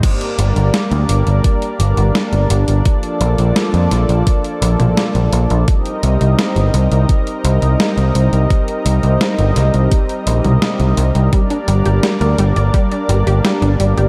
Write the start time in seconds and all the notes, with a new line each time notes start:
0.03 G3 A#3 D4 A#4 D5, kick, closed hi-hat, crash
0.21 closed hi-hat
0.39 G1, closed hi-hat
0.56 G1, closed hi-hat
0.74 snare, closed hi-hat
0.92 D2, closed hi-hat
1.09 G1, closed hi-hat
1.27 G1, closed hi-hat
1.44 kick, closed hi-hat
1.62 closed hi-hat
1.80 G1, closed hi-hat
1.97 G1, closed hi-hat
2.15 snare, closed hi-hat
2.33 G1, closed hi-hat
2.50 G1, closed hi-hat
2.68 G1, closed hi-hat
2.85 F3 A#3 A4 D5, kick, closed hi-hat
3.03 closed hi-hat
3.21 A#1, closed hi-hat
3.38 A#1, closed hi-hat
3.56 snare, closed hi-hat
3.74 F2, closed hi-hat
3.91 A#1, snare, closed hi-hat
4.09 A#1, closed hi-hat
4.27 kick, closed hi-hat
4.44 closed hi-hat
4.62 A#1, closed hi-hat
4.80 A#1, closed hi-hat, mid tom
4.97 snare, closed hi-hat
5.15 A#1, closed hi-hat
5.33 A#1, closed hi-hat
5.50 A#1, closed hi-hat
5.68 G3 C4 D#4 A#4 D#5, kick, closed hi-hat
5.86 closed hi-hat
6.03 C2, closed hi-hat
6.21 C2, closed hi-hat
6.39 snare, closed hi-hat
6.56 G1, closed hi-hat
6.74 C2, closed hi-hat
6.92 C2, closed hi-hat
7.09 kick, closed hi-hat
7.27 closed hi-hat
7.45 C2, closed hi-hat
7.62 C2, closed hi-hat
7.80 snare, closed hi-hat
7.97 C2, closed hi-hat
8.15 C2, closed hi-hat
8.33 C2, closed hi-hat
8.50 kick, closed hi-hat
8.68 closed hi-hat
8.86 C2, closed hi-hat
9.03 C2, closed hi-hat
9.21 snare, closed hi-hat
9.39 G1, closed hi-hat
9.56 C2, snare, closed hi-hat
9.74 C2, closed hi-hat
9.91 kick, closed hi-hat
10.09 closed hi-hat
10.27 A#1, closed hi-hat
10.45 C2, closed hi-hat, mid tom
10.62 snare, closed hi-hat
10.80 C2, closed hi-hat
10.97 C2, closed hi-hat
11.15 C2, closed hi-hat
11.33 G3 A#3 D4 A#4 D5, kick, closed hi-hat
11.50 D4, closed hi-hat
11.68 G1 G3, closed hi-hat
11.86 G1 G4, closed hi-hat
12.03 G3, snare, closed hi-hat
12.21 D2 A#4, closed hi-hat
12.38 G1 G3, closed hi-hat
12.56 G1 D5, closed hi-hat
12.74 G3, kick, closed hi-hat
12.92 D4, closed hi-hat
13.09 G1 G3, closed hi-hat
13.27 G1 G4, closed hi-hat
13.45 G3, snare, closed hi-hat
13.62 G1 D4, closed hi-hat
13.80 G1 G3, closed hi-hat
13.97 G1 G4, closed hi-hat